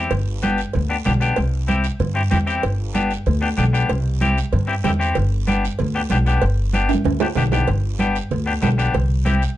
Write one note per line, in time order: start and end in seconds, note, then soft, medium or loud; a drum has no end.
0.00 0.12 C4 medium
0.00 0.12 E4 medium
0.00 0.12 G4 medium
0.11 0.62 G1 medium
0.11 cowbell loud
0.11 high conga soft
0.11 low conga medium
0.11 long guiro medium
0.43 0.59 B3 medium
0.43 0.60 D4 medium
0.43 0.60 G4 medium
0.43 cowbell medium
0.43 high conga medium
0.43 short guiro medium
0.58 short guiro medium
0.73 1.00 D2 medium
0.73 cowbell medium
0.73 high conga soft
0.73 low conga medium
0.73 long guiro medium
0.89 0.95 B3 medium
0.89 0.96 D4 medium
0.89 0.96 G4 medium
1.05 1.31 B1 medium
1.05 1.11 B3 medium
1.05 1.11 D4 medium
1.05 1.12 G4 medium
1.05 cowbell medium
1.05 high conga medium
1.05 low conga medium
1.05 short guiro medium
1.21 1.37 B3 medium
1.21 1.37 D4 medium
1.21 1.37 G4 medium
1.21 short guiro medium
1.36 1.88 C2 medium
1.36 cowbell loud
1.36 high conga soft
1.36 long guiro medium
1.68 1.85 C4 medium
1.68 1.85 E4 medium
1.68 1.86 G4 medium
1.68 cowbell medium
1.68 high conga medium
1.68 short guiro medium
1.84 short guiro medium
1.99 2.25 G2 medium
1.99 cowbell medium
1.99 high conga soft
1.99 low conga medium
1.99 long guiro medium
2.15 2.21 C4 medium
2.15 2.22 E4 medium
2.15 2.22 G4 medium
2.31 2.57 E2 medium
2.31 2.37 C4 medium
2.31 2.37 E4 medium
2.31 2.37 G4 medium
2.31 cowbell medium
2.31 high conga medium
2.31 low conga medium
2.31 short guiro medium
2.47 2.63 C4 medium
2.47 2.63 E4 medium
2.47 2.63 G4 medium
2.47 short guiro medium
2.63 3.14 G1 medium
2.63 cowbell loud
2.63 high conga soft
2.63 long guiro medium
2.94 3.11 B3 medium
2.94 3.12 D4 medium
2.94 3.12 G4 medium
2.94 cowbell medium
2.94 high conga medium
2.94 short guiro medium
3.11 short guiro medium
3.26 3.52 D2 medium
3.26 cowbell medium
3.26 high conga soft
3.26 low conga medium
3.26 long guiro medium
3.42 3.48 B3 medium
3.42 3.48 D4 medium
3.42 3.48 G4 medium
3.57 3.83 B1 medium
3.57 3.63 B3 medium
3.57 3.64 D4 medium
3.57 3.64 G4 medium
3.57 cowbell medium
3.57 high conga medium
3.57 low conga medium
3.57 short guiro medium
3.73 3.90 B3 medium
3.73 3.90 D4 medium
3.73 3.90 G4 medium
3.73 short guiro medium
3.89 4.40 C2 loud
3.89 cowbell loud
3.89 high conga soft
3.89 long guiro medium
4.21 4.38 C4 medium
4.21 4.38 E4 medium
4.21 4.38 G4 medium
4.21 cowbell medium
4.21 high conga medium
4.21 short guiro medium
4.38 short guiro medium
4.53 4.78 G2 medium
4.53 cowbell medium
4.53 high conga soft
4.53 low conga medium
4.53 long guiro medium
4.67 4.74 C4 medium
4.67 4.74 E4 medium
4.67 4.74 G4 medium
4.84 5.10 E2 medium
4.84 4.90 C4 medium
4.84 4.90 E4 medium
4.84 4.90 G4 medium
4.84 cowbell medium
4.84 high conga medium
4.84 low conga medium
4.84 low timbale medium
4.84 short guiro medium
4.99 5.16 C4 medium
4.99 5.16 E4 medium
4.99 5.16 G4 medium
4.99 short guiro medium
5.15 5.67 G1 loud
5.15 cowbell loud
5.15 high conga soft
5.15 low conga medium
5.15 long guiro medium
5.47 5.64 B3 medium
5.47 5.64 D4 medium
5.47 5.64 G4 medium
5.47 cowbell medium
5.47 high conga medium
5.47 short guiro medium
5.65 short guiro medium
5.79 6.05 D2 medium
5.79 cowbell medium
5.79 high conga soft
5.79 low conga medium
5.79 long guiro medium
5.95 6.00 B3 medium
5.95 6.01 D4 medium
5.95 6.01 G4 medium
6.10 6.36 B1 medium
6.10 6.16 B3 medium
6.10 6.16 D4 medium
6.10 6.17 G4 medium
6.10 cowbell medium
6.10 high conga medium
6.10 short guiro medium
6.26 6.43 B3 medium
6.26 6.43 D4 medium
6.26 6.43 G4 medium
6.26 short guiro medium
6.42 6.93 G1 loud
6.42 cowbell loud
6.42 high conga soft
6.42 long guiro medium
6.73 6.90 B3 medium
6.73 6.90 D4 medium
6.73 6.91 G4 medium
6.73 cowbell medium
6.73 high conga medium
6.73 short guiro medium
6.89 high timbale loud
6.89 short guiro medium
6.94 high conga medium
7.04 7.30 D2 medium
7.04 cowbell medium
7.04 low conga medium
7.04 high timbale medium
7.04 long guiro medium
7.20 7.27 B3 medium
7.20 7.27 D4 medium
7.20 7.27 G4 medium
7.20 low timbale loud
7.35 7.61 B1 loud
7.35 7.42 B3 medium
7.35 7.42 D4 medium
7.35 7.43 G4 medium
7.35 cowbell medium
7.35 low conga loud
7.35 low timbale medium
7.35 short guiro medium
7.47 low conga medium
7.52 7.68 B3 medium
7.52 7.68 D4 medium
7.52 7.69 G4 medium
7.52 low timbale medium
7.52 short guiro medium
7.57 low conga medium
7.68 8.18 G1 loud
7.68 cowbell loud
7.68 high conga soft
7.68 low conga medium
7.68 long guiro medium
7.99 8.16 B3 medium
7.99 8.16 D4 medium
7.99 8.17 G4 medium
7.99 cowbell medium
7.99 high conga medium
7.99 short guiro medium
8.15 short guiro medium
8.31 8.56 D2 loud
8.31 cowbell medium
8.31 high conga soft
8.31 low conga medium
8.31 long guiro medium
8.46 8.52 B3 medium
8.46 8.52 D4 medium
8.46 8.53 G4 medium
8.62 8.88 B1 medium
8.62 8.68 B3 medium
8.62 8.68 D4 medium
8.62 8.68 G4 medium
8.62 cowbell medium
8.62 high conga medium
8.62 low conga medium
8.62 low timbale medium
8.62 short guiro medium
8.78 8.94 B3 medium
8.78 8.94 D4 medium
8.78 8.95 G4 medium
8.78 short guiro medium
8.94 9.45 C2 loud
8.94 cowbell loud
8.94 high conga soft
8.94 low conga medium
8.94 long guiro medium
9.25 9.42 C4 medium
9.25 9.42 E4 medium
9.25 9.43 G4 medium
9.25 cowbell medium
9.25 high conga medium
9.25 short guiro medium
9.42 short guiro medium